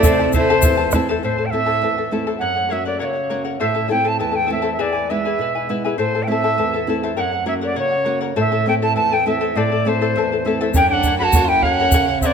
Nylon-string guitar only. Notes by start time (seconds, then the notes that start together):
Already playing: A3 C4 E4
0.05 C3
0.35 A3 C4 E4
0.64 E2
0.93 A3 C4 E4
1.23 A2
1.52 A3 C4 E4
1.82 E2
2.11 A3 C4 E4
2.41 F#2
2.71 A#3 C#4 F#4
3.02 C#3
3.30 A#3 C#4 F#4
3.61 A2
3.90 A3 C4 E4
4.20 E2
4.50 A3 C4 E4
4.80 E2
5.10 G#3 B3 E4
5.39 B2
5.69 G#3 B3 E4
5.98 A2
6.27 A3 C4 E4
6.58 E2
6.87 A3 C4 E4
7.17 F#2
7.46 A#3 C#4 F#4
7.76 C#3
8.06 A#3 C#4 F#4
8.36 A2
8.66 A3 C4 E4
8.96 E2
9.26 A3 C4 E4
9.55 A2
9.85 A3 C4 E4
10.16 E2
10.45 A3 C4 E4
10.75 F#2
11.34 A#3 C#4 F#4
11.93 C#3